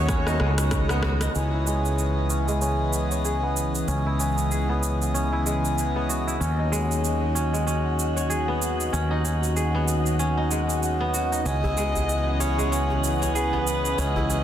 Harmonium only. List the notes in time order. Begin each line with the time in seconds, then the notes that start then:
Already playing: F#3 A3 C#4 D#4
0.39 F#3 A3 C#4 D#4 A4
0.56 F#3 C#4 D#4 D#5
1.33 E3 B3 C#4 G#4 D#5
6.38 F#3 C#4 D#4
11.43 E3 B3 C#4 D#5
11.48 G#4